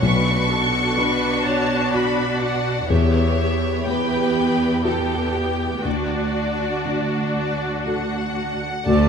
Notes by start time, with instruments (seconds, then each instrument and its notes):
0.02 grand piano B1, cello section B2, viola section D4 F#4, violin section B4 C#6
0.51 violin section A4
0.98 grand piano D4, violin section B4
1.44 violin section C#5 A5
1.93 grand piano F#4, violin section D5 B5
2.42 violin section F#5
2.89 cello section E2, grand piano E2, viola section B3 G4, violin section C#5 E5
3.85 viola section B3 G4, grand piano B3, violin section B4 G5
4.84 viola section B3 G4, grand piano E4 G4, violin section A4 G5
5.34 violin section G4
5.84 cello section D2, grand piano D2, viola section D4 F#4, violin section F#4 D5
6.86 grand piano D4
7.36 violin section D5
7.86 grand piano F#4 A4, violin section F#5
8.86 grand piano D2, double bass section D2, cello section D3, viola section A3 D4, french horn section A3 F#4, violin section A3 D5 A5, clarinet F#4, oboe D5